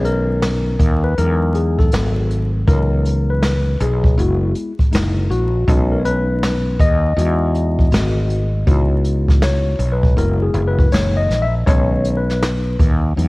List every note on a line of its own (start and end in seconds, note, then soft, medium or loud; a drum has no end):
0.00 0.76 B1 loud
0.00 0.75 D#3 medium
0.00 0.76 G#3 soft
0.00 0.76 C#4 medium
0.05 1.07 A#4 medium
0.05 closed hi-hat medium
0.42 snare loud
0.42 closed hi-hat medium
0.79 1.14 D#2 loud
0.79 kick medium
0.79 closed hi-hat medium
1.04 1.18 B4 medium
1.18 1.89 E2 medium
1.18 1.89 F#3 medium
1.18 1.89 G#3 medium
1.18 1.89 D#4 medium
1.18 1.57 A#4 loud
1.18 closed hi-hat medium
1.55 1.77 G#4 medium
1.55 closed hi-hat medium
1.78 2.50 A4 medium
1.78 kick medium
1.92 2.64 G#1 medium
1.92 2.63 F#3 medium
1.92 2.64 A3 soft
1.92 2.64 C4 medium
1.92 snare loud
1.92 closed hi-hat medium
2.30 closed hi-hat medium
2.67 3.76 C#2 loud
2.67 3.76 E3 medium
2.67 3.76 F#3 medium
2.67 3.76 B3 medium
2.67 3.76 D#4 medium
2.67 3.31 A#4 loud
2.67 kick loud
2.67 closed hi-hat medium
3.05 closed hi-hat medium
3.30 3.82 B4 medium
3.42 snare loud
3.42 closed hi-hat medium
3.80 4.15 B1 loud
3.80 4.20 G#4 medium
3.80 closed hi-hat medium
4.04 kick loud
4.17 4.52 F#1 loud
4.17 4.71 G#3 medium
4.17 4.71 B3 medium
4.17 4.72 E4 medium
4.17 4.53 F#4 medium
4.17 closed hi-hat medium
4.55 closed hi-hat medium
4.79 kick medium
4.79 closed hi-hat medium
4.91 5.27 F#1 medium
4.91 5.46 G#3 medium
4.91 5.46 A#3 soft
4.91 5.31 D#4 medium
4.91 5.47 E4 medium
4.91 snare loud
4.91 closed hi-hat medium
5.30 5.64 A#1 medium
5.30 5.94 F#4 medium
5.30 closed hi-hat medium
5.67 6.76 B1 loud
5.67 6.76 G#3 medium
5.67 6.76 C#4 medium
5.67 6.77 D#4 medium
5.67 kick loud
5.67 closed hi-hat medium
5.92 6.01 A#4 medium
5.99 6.05 C#5 medium
6.05 6.82 B4 loud
6.05 closed hi-hat medium
6.43 snare loud
6.43 closed hi-hat loud
6.79 7.14 D#2 loud
6.79 8.64 D#5 loud
6.79 kick medium
6.79 closed hi-hat medium
7.17 7.88 E2 medium
7.17 7.88 G#3 medium
7.17 7.89 D#4 medium
7.17 7.89 F#4 medium
7.17 closed hi-hat medium
7.55 closed hi-hat medium
7.79 kick medium
7.92 8.63 G#1 medium
7.92 8.46 A3 medium
7.92 8.46 C4 medium
7.92 8.47 F#4 medium
7.92 snare loud
7.92 closed hi-hat medium
8.30 closed hi-hat medium
8.66 9.76 C#2 loud
8.66 9.75 B3 medium
8.66 9.76 D#4 medium
8.66 9.76 E4 medium
8.66 9.76 F#4 medium
8.66 kick loud
8.66 closed hi-hat medium
9.04 closed hi-hat medium
9.28 kick medium
9.28 snare soft
9.42 9.95 C#5 medium
9.42 snare loud
9.42 closed hi-hat loud
9.79 10.14 B1 medium
9.79 closed hi-hat medium
9.92 10.18 B4 medium
10.03 kick medium
10.16 10.52 F#1 loud
10.16 10.88 G#3 medium
10.16 10.88 B3 medium
10.16 10.89 E4 medium
10.16 10.43 A#4 medium
10.16 closed hi-hat medium
10.42 10.68 G#4 medium
10.54 10.89 F#1 medium
10.54 closed hi-hat medium
10.68 10.93 B4 loud
10.79 kick medium
10.91 11.27 F#1 medium
10.91 11.46 E3 medium
10.91 11.46 G#3 soft
10.91 11.46 A#3 soft
10.91 11.46 D#4 medium
10.91 11.18 C#5 medium
10.91 snare loud
10.91 closed hi-hat medium
11.17 11.43 D#5 loud
11.29 11.64 A#1 medium
11.29 snare soft
11.29 closed hi-hat medium
11.42 11.53 E5 loud
11.66 12.76 B1 loud
11.66 12.21 D#3 medium
11.66 12.21 G#3 medium
11.66 12.21 C#4 medium
11.66 12.19 C#5 loud
11.66 kick loud
11.66 closed hi-hat loud
12.05 closed hi-hat medium
12.17 12.88 B4 medium
12.30 snare soft
12.42 snare loud
12.42 closed hi-hat loud
12.79 13.14 D#2 medium
12.79 kick medium
12.79 closed hi-hat medium
13.16 13.28 E2 medium
13.16 13.28 F#3 medium
13.16 13.28 G#3 medium
13.16 13.28 D#4 medium
13.16 closed hi-hat medium